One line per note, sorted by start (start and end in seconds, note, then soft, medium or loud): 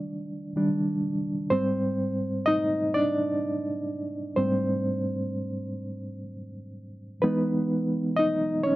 0.00 0.55 D#3 medium
0.00 0.55 G3 soft
0.00 0.53 D4 medium
0.00 0.51 D5 medium
0.56 1.00 D#3 soft
0.56 1.00 G3 soft
0.56 1.00 D4 medium
1.50 4.33 G#2 medium
1.50 4.33 G3 soft
1.50 2.43 C4 medium
1.50 2.49 C5 medium
2.46 2.91 D#4 medium
2.46 2.95 D#5 loud
2.94 4.34 D4 medium
2.94 4.41 D5 medium
4.36 7.19 G#2 medium
4.36 7.19 G3 soft
4.36 6.24 C4 medium
4.36 6.23 C5 medium
7.22 8.76 E3 medium
7.22 8.76 G#3 medium
7.22 8.15 B3 medium
7.22 8.18 D#4 medium
7.22 8.13 B4 medium
8.16 8.63 D#4 medium
8.16 8.61 D#5 loud
8.63 8.76 C#4 medium
8.63 8.76 C#5 medium